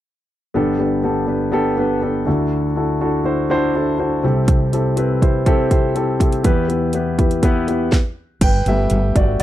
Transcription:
0.54 grand piano G1 G2 B3 D4 G4 A4
0.79 grand piano B3 D4 G4 A4
1.03 grand piano B3 D4 G4 A4
1.27 grand piano B3 D4 G4 B4
1.52 grand piano B3 D4 G4 A4
1.77 grand piano B3 D4 G4 B4
2.02 grand piano B3 D4 G4 A4
2.26 grand piano D2 D3 D4 E4 F#4 A4
2.76 grand piano D4 E4 F#4 A4
3.01 grand piano D4 E4 F#4 A4
3.24 grand piano D4 E4 F#4 C5
3.50 grand piano D4 E4 F#4 C5
3.75 grand piano D4 E4 F#4 A4
3.98 grand piano D4 E4 F#4 C5
4.23 grand piano C2 C3 C4 E4 G4 A4
4.48 kick, closed hi-hat
4.72 grand piano C4 E4 G4 A4, closed hi-hat
4.97 grand piano C4 E4 G4 B4, closed hi-hat
5.22 grand piano C4 E4 G4 C5, kick, closed hi-hat
5.46 grand piano C4 E4 G4 A4, kick, closed hi-hat
5.70 grand piano C4 E4 G4 C5, kick, closed hi-hat
5.95 grand piano C4 E4 G4 A4, closed hi-hat
6.19 grand piano C4 E4 G4 A4, kick, closed hi-hat
6.32 closed hi-hat
6.44 grand piano E2 E3 B3 E4 G4 B4, kick, closed hi-hat
6.68 grand piano B3 E4 G4 B4, closed hi-hat
6.93 grand piano B3 E4 G4 B4, closed hi-hat
7.19 grand piano B3 E4 G4 B4, kick, closed hi-hat
7.31 closed hi-hat
7.43 grand piano B3 E4 G4 B4, kick, closed hi-hat
7.68 grand piano B3 E4 G4 B4, closed hi-hat
7.92 kick, snare
8.41 fretless electric bass G1, grand piano B4 G5, kick, closed hi-hat, crash
8.66 fretless electric bass G1, grand piano G3 A3 B3 G4 E5, closed hi-hat
8.90 fretless electric bass G1, closed hi-hat
9.16 fretless electric bass G1, grand piano F#4 D5, kick, closed hi-hat
9.40 closed hi-hat

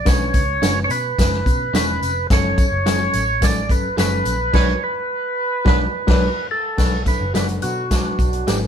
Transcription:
0.05 picked electric bass B1, reed electric piano D3 C#4 B4, tonewheel organ C#5, kick, snare, closed hi-hat, tambourine
0.34 picked electric bass C#2, kick, closed hi-hat, tambourine
0.62 picked electric bass F#1, reed electric piano D3 C#4 B4, clean electric guitar D4 F#4 C#5, snare, closed hi-hat, tambourine
0.84 tonewheel organ C#5
0.89 picked electric bass B2, tonewheel organ B4, closed hi-hat, tambourine
1.18 picked electric bass F#1, reed electric piano D3 C#4 B4, kick, snare, closed hi-hat, tambourine
1.33 snare
1.46 picked electric bass B2, reed electric piano D3 C#4 B4, kick, closed hi-hat, tambourine
1.74 picked electric bass E1, reed electric piano D3 C#4 B4, clean electric guitar D4 F#4 C#5, tonewheel organ B4, snare, closed hi-hat, tambourine
2.02 picked electric bass F1, closed hi-hat, tambourine
2.30 picked electric bass F#1, reed electric piano F#3 C#4 A4, tonewheel organ C#5, kick, snare, closed hi-hat, tambourine
2.58 kick, closed hi-hat, tambourine
2.72 picked electric bass F#1
2.86 reed electric piano F#3 C#4 A4, clean electric guitar F#4 A4 C#5, snare, closed hi-hat, tambourine
3.13 picked electric bass A1, closed hi-hat, tambourine
3.41 reed electric piano F#3 C#4 A4, tonewheel organ D5, kick, snare, closed hi-hat, tambourine
3.69 picked electric bass G1, reed electric piano F#3 C#4 A4, tonewheel organ B4, kick, closed hi-hat, tambourine
3.97 picked electric bass F#1, reed electric piano F#3 C#4 A4, clean electric guitar F#4 A4 C#5, tonewheel organ B4, snare, closed hi-hat, tambourine
4.25 picked electric bass A#1, closed hi-hat, tambourine
4.53 picked electric bass B1, horn section F#3 B3 D4 B4, reed electric piano F#3 D4 B4, clean electric guitar F#4 B4 D5, tonewheel organ C#5, kick, snare, crash
4.83 tonewheel organ B4
5.65 picked electric bass B1, horn section F#3 B3 D4 B4, reed electric piano F#3 D4 B4, clean electric guitar F#4 B4 D5, tonewheel organ B4, kick, snare
6.07 picked electric bass B1, reed electric piano F#3 D4 B4, horn section F#3 B3 D4 B4, clean electric guitar F#4 B4 D5, kick, snare, crash
6.51 tonewheel organ A4
6.77 picked electric bass B1, horn section D3 F#3 B3 F#4, reed electric piano F#3 D4 B4, kick, snare, crash, tambourine
7.05 horn section E3 C#4 E4, reed electric piano F#3 D4 A4, tonewheel organ B4, kick, closed hi-hat, tambourine
7.21 picked electric bass F#1
7.33 picked electric bass F#1, horn section D3 F#3 B3 F#4, reed electric piano F#3 D4 B4, clean electric guitar F#4 B4 D5, tonewheel organ B4, snare, closed hi-hat, tambourine
7.48 closed hi-hat
7.61 picked electric bass B2, horn section D3 F#3 B3 F#4, tonewheel organ F#4, closed hi-hat, tambourine
7.90 horn section B2 D3 F#3 D4, reed electric piano F#3 D4 B4, kick, snare, closed hi-hat, tambourine
8.18 picked electric bass B1, horn section B2 D3 F#3 D4, kick, closed hi-hat, tambourine
8.33 closed hi-hat
8.47 picked electric bass G#1, reed electric piano F#3 D4 A4, clean electric guitar F#4 B4 D5, tonewheel organ G4, snare, closed hi-hat, tambourine

